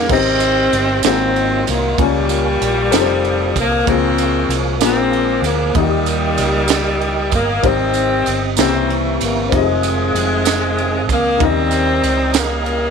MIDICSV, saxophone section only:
0, 0, Header, 1, 2, 480
1, 0, Start_track
1, 0, Key_signature, -4, "major"
1, 0, Tempo, 628272
1, 75, Time_signature, 6, 3, 24, 8
1, 9857, End_track
2, 0, Start_track
2, 0, Title_t, "Saxophone section"
2, 0, Program_c, 0, 65
2, 80, Note_on_c, 0, 55, 87
2, 87, Note_on_c, 0, 51, 77
2, 90, Note_on_c, 0, 60, 117
2, 766, Note_off_c, 0, 55, 0
2, 769, Note_off_c, 0, 51, 0
2, 787, Note_off_c, 0, 60, 0
2, 794, Note_on_c, 0, 54, 81
2, 796, Note_on_c, 0, 51, 81
2, 796, Note_on_c, 0, 60, 102
2, 1244, Note_off_c, 0, 60, 0
2, 1284, Note_on_c, 0, 58, 98
2, 1482, Note_off_c, 0, 54, 0
2, 1483, Note_off_c, 0, 51, 0
2, 1518, Note_off_c, 0, 58, 0
2, 1525, Note_on_c, 0, 46, 79
2, 1535, Note_on_c, 0, 55, 113
2, 2687, Note_off_c, 0, 46, 0
2, 2722, Note_off_c, 0, 55, 0
2, 2749, Note_on_c, 0, 58, 100
2, 2962, Note_on_c, 0, 53, 84
2, 2969, Note_on_c, 0, 56, 86
2, 2970, Note_off_c, 0, 58, 0
2, 2976, Note_on_c, 0, 60, 115
2, 3479, Note_off_c, 0, 60, 0
2, 3645, Note_off_c, 0, 53, 0
2, 3648, Note_off_c, 0, 56, 0
2, 3692, Note_on_c, 0, 53, 79
2, 3699, Note_on_c, 0, 56, 81
2, 3704, Note_on_c, 0, 60, 114
2, 4136, Note_off_c, 0, 60, 0
2, 4169, Note_on_c, 0, 58, 98
2, 4370, Note_off_c, 0, 53, 0
2, 4373, Note_off_c, 0, 56, 0
2, 4380, Note_on_c, 0, 46, 75
2, 4388, Note_on_c, 0, 51, 79
2, 4396, Note_on_c, 0, 55, 106
2, 4399, Note_off_c, 0, 58, 0
2, 5553, Note_off_c, 0, 46, 0
2, 5557, Note_off_c, 0, 51, 0
2, 5592, Note_off_c, 0, 55, 0
2, 5604, Note_on_c, 0, 58, 92
2, 5836, Note_off_c, 0, 58, 0
2, 5845, Note_on_c, 0, 51, 74
2, 5847, Note_on_c, 0, 55, 78
2, 5861, Note_on_c, 0, 60, 110
2, 6428, Note_off_c, 0, 51, 0
2, 6428, Note_off_c, 0, 55, 0
2, 6428, Note_off_c, 0, 60, 0
2, 6558, Note_on_c, 0, 52, 77
2, 6558, Note_on_c, 0, 55, 75
2, 6563, Note_on_c, 0, 60, 101
2, 6812, Note_off_c, 0, 60, 0
2, 7056, Note_on_c, 0, 58, 91
2, 7242, Note_off_c, 0, 52, 0
2, 7243, Note_off_c, 0, 55, 0
2, 7266, Note_off_c, 0, 58, 0
2, 7282, Note_on_c, 0, 48, 74
2, 7282, Note_on_c, 0, 51, 76
2, 7290, Note_on_c, 0, 56, 101
2, 8445, Note_off_c, 0, 48, 0
2, 8445, Note_off_c, 0, 51, 0
2, 8449, Note_off_c, 0, 56, 0
2, 8489, Note_on_c, 0, 58, 91
2, 8719, Note_off_c, 0, 58, 0
2, 8736, Note_on_c, 0, 55, 75
2, 8744, Note_on_c, 0, 60, 108
2, 9413, Note_off_c, 0, 55, 0
2, 9448, Note_off_c, 0, 60, 0
2, 9450, Note_on_c, 0, 55, 70
2, 9451, Note_on_c, 0, 49, 69
2, 9452, Note_on_c, 0, 58, 98
2, 9857, Note_off_c, 0, 49, 0
2, 9857, Note_off_c, 0, 55, 0
2, 9857, Note_off_c, 0, 58, 0
2, 9857, End_track
0, 0, End_of_file